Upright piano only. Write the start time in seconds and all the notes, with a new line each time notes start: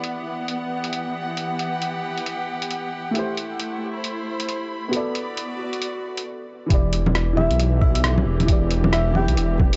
Already playing: E3 E4 G4 D5
3.11 A3 E4
3.16 G4 C5
4.88 B3 F#4
4.94 A4 D5
6.66 E3 E4
6.72 G4 D5
7.33 E3 E4
7.38 G4 E5
8.44 E3 E4
8.49 G4 D5
9.11 E3 E4
9.16 G4 E5